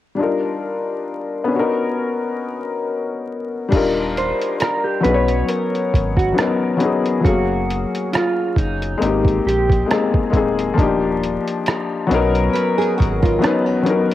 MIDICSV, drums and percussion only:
0, 0, Header, 1, 2, 480
1, 0, Start_track
1, 0, Tempo, 882353
1, 101, Time_signature, 4, 2, 24, 8
1, 7693, End_track
2, 0, Start_track
2, 0, Title_t, "Drums"
2, 2023, Note_on_c, 9, 49, 79
2, 2026, Note_on_c, 9, 36, 109
2, 2030, Note_on_c, 9, 42, 64
2, 2078, Note_off_c, 9, 49, 0
2, 2080, Note_off_c, 9, 36, 0
2, 2084, Note_off_c, 9, 42, 0
2, 2270, Note_on_c, 9, 42, 57
2, 2325, Note_off_c, 9, 42, 0
2, 2402, Note_on_c, 9, 42, 52
2, 2457, Note_off_c, 9, 42, 0
2, 2504, Note_on_c, 9, 42, 85
2, 2514, Note_on_c, 9, 37, 98
2, 2558, Note_off_c, 9, 42, 0
2, 2568, Note_off_c, 9, 37, 0
2, 2745, Note_on_c, 9, 42, 63
2, 2800, Note_off_c, 9, 42, 0
2, 2876, Note_on_c, 9, 42, 44
2, 2930, Note_off_c, 9, 42, 0
2, 2985, Note_on_c, 9, 42, 82
2, 3039, Note_off_c, 9, 42, 0
2, 3128, Note_on_c, 9, 42, 33
2, 3182, Note_off_c, 9, 42, 0
2, 3230, Note_on_c, 9, 36, 81
2, 3238, Note_on_c, 9, 42, 66
2, 3285, Note_off_c, 9, 36, 0
2, 3292, Note_off_c, 9, 42, 0
2, 3355, Note_on_c, 9, 36, 88
2, 3368, Note_on_c, 9, 42, 41
2, 3409, Note_off_c, 9, 36, 0
2, 3422, Note_off_c, 9, 42, 0
2, 3471, Note_on_c, 9, 42, 69
2, 3475, Note_on_c, 9, 37, 110
2, 3526, Note_off_c, 9, 42, 0
2, 3529, Note_off_c, 9, 37, 0
2, 3701, Note_on_c, 9, 42, 54
2, 3756, Note_off_c, 9, 42, 0
2, 3840, Note_on_c, 9, 42, 40
2, 3894, Note_off_c, 9, 42, 0
2, 3943, Note_on_c, 9, 36, 114
2, 3948, Note_on_c, 9, 42, 70
2, 3997, Note_off_c, 9, 36, 0
2, 4002, Note_off_c, 9, 42, 0
2, 4190, Note_on_c, 9, 42, 58
2, 4245, Note_off_c, 9, 42, 0
2, 4323, Note_on_c, 9, 42, 50
2, 4377, Note_off_c, 9, 42, 0
2, 4424, Note_on_c, 9, 42, 77
2, 4434, Note_on_c, 9, 37, 97
2, 4478, Note_off_c, 9, 42, 0
2, 4488, Note_off_c, 9, 37, 0
2, 4658, Note_on_c, 9, 36, 78
2, 4669, Note_on_c, 9, 42, 60
2, 4713, Note_off_c, 9, 36, 0
2, 4723, Note_off_c, 9, 42, 0
2, 4799, Note_on_c, 9, 42, 42
2, 4854, Note_off_c, 9, 42, 0
2, 4907, Note_on_c, 9, 42, 76
2, 4962, Note_off_c, 9, 42, 0
2, 5031, Note_on_c, 9, 36, 86
2, 5048, Note_on_c, 9, 42, 37
2, 5085, Note_off_c, 9, 36, 0
2, 5102, Note_off_c, 9, 42, 0
2, 5160, Note_on_c, 9, 42, 62
2, 5215, Note_off_c, 9, 42, 0
2, 5274, Note_on_c, 9, 36, 91
2, 5287, Note_on_c, 9, 42, 42
2, 5329, Note_off_c, 9, 36, 0
2, 5341, Note_off_c, 9, 42, 0
2, 5389, Note_on_c, 9, 42, 67
2, 5392, Note_on_c, 9, 37, 112
2, 5443, Note_off_c, 9, 42, 0
2, 5447, Note_off_c, 9, 37, 0
2, 5516, Note_on_c, 9, 36, 93
2, 5571, Note_off_c, 9, 36, 0
2, 5620, Note_on_c, 9, 36, 85
2, 5623, Note_on_c, 9, 42, 53
2, 5674, Note_off_c, 9, 36, 0
2, 5677, Note_off_c, 9, 42, 0
2, 5760, Note_on_c, 9, 42, 45
2, 5814, Note_off_c, 9, 42, 0
2, 5864, Note_on_c, 9, 36, 118
2, 5869, Note_on_c, 9, 42, 64
2, 5918, Note_off_c, 9, 36, 0
2, 5923, Note_off_c, 9, 42, 0
2, 6112, Note_on_c, 9, 42, 59
2, 6167, Note_off_c, 9, 42, 0
2, 6243, Note_on_c, 9, 42, 49
2, 6298, Note_off_c, 9, 42, 0
2, 6345, Note_on_c, 9, 42, 82
2, 6355, Note_on_c, 9, 37, 101
2, 6399, Note_off_c, 9, 42, 0
2, 6409, Note_off_c, 9, 37, 0
2, 6589, Note_on_c, 9, 42, 57
2, 6643, Note_off_c, 9, 42, 0
2, 6719, Note_on_c, 9, 42, 44
2, 6774, Note_off_c, 9, 42, 0
2, 6830, Note_on_c, 9, 42, 78
2, 6884, Note_off_c, 9, 42, 0
2, 6972, Note_on_c, 9, 42, 34
2, 7026, Note_off_c, 9, 42, 0
2, 7072, Note_on_c, 9, 36, 81
2, 7082, Note_on_c, 9, 42, 62
2, 7126, Note_off_c, 9, 36, 0
2, 7137, Note_off_c, 9, 42, 0
2, 7196, Note_on_c, 9, 36, 90
2, 7210, Note_on_c, 9, 42, 41
2, 7250, Note_off_c, 9, 36, 0
2, 7264, Note_off_c, 9, 42, 0
2, 7309, Note_on_c, 9, 42, 73
2, 7312, Note_on_c, 9, 37, 102
2, 7364, Note_off_c, 9, 42, 0
2, 7367, Note_off_c, 9, 37, 0
2, 7542, Note_on_c, 9, 42, 52
2, 7596, Note_off_c, 9, 42, 0
2, 7693, End_track
0, 0, End_of_file